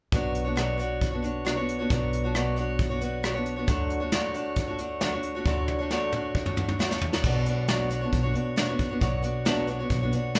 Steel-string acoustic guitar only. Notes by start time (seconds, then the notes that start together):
0.12 B2 F#3 B3 D4 F#4 C#5
0.44 B3 D4 F#4 C#5
0.56 B2 F#3 B3 D4 F#4 C#5
0.78 B3 D4 F#4 C#5
1.11 D4 F#4 C#5
1.15 B3
1.22 B3 D4 F#4 C#5
1.45 B2 F#3 B3 D4 F#4 C#5
1.56 B3 D4 F#4 C#5
1.79 B3 D4 F#4 C#5
1.90 B2 F#3 B3 D4 F#4 C#5
2.24 B3 D4 F#4 C#5
2.35 B2 F#3 B3 D4 F#4 C#5
2.56 B3 D4 F#4 C#5
2.89 B3 D4 F#4 C#5
3.01 B3 D4 F#4 C#5
3.23 B2 F#3 B3 D4 F#4 C#5
3.34 B3 D4 F#4 C#5
3.56 B3 D4 F#4 C#5
3.67 D3 F#3 A3 D4 F#4 C#5
4.00 A3 D4 F#4 C#5
4.12 D3 F#3 A3 D4 F#4 C#5
4.34 A3 D4 F#4 C#5
4.67 A3 D4 F#4 C#5
4.79 A3 D4 F#4 C#5
5.02 D3 F#3 A3 D4 F#4 C#5
5.12 A3 D4 F#4 C#5
5.35 A3 D4 F#4 C#5
5.46 D3 F#3 A3 D4 F#4 C#5
5.79 A3 D4 F#4 C#5
5.90 D3 F#3 A3 D4 F#4 C#5
6.12 A3 D4 F#4 C#5
6.45 A3 D4 F#4 C#5
6.56 A3 D4 F#4 C#5
6.67 A3 D4 F#4 C#5
6.79 D3 F#3 A3 D4 F#4 C#5
6.89 A3 D4 F#4 C#5
7.12 A3 D4 F#4 C#5
7.24 B2 F#3 B3 D4 F#4 C#5
7.46 B3 D4 F#4 C#5
7.69 B2 F#3 B3 D4 F#4 C#5
7.90 B3 D4 F#4 C#5
8.01 B3 D4 F#4 C#5
8.23 B3 D4 F#4 C#5
8.33 B3 D4 F#4 C#5
8.56 B2 F#3 B3 D4 F#4 C#5
8.67 B3 D4 F#4 C#5
8.90 B3 D4 F#4 C#5
9.01 B2 F#3 B3 D4 F#4 C#5
9.22 B3 D4 F#4 C#5
9.45 B2 F#3 B3 D4 F#4 C#5
9.67 B3 D4 F#4 C#5
9.79 B3 D4 F#4 C#5
10.01 B3 D4 F#4 C#5
10.12 B3 D4 F#4 C#5
10.35 B2 F#3 B3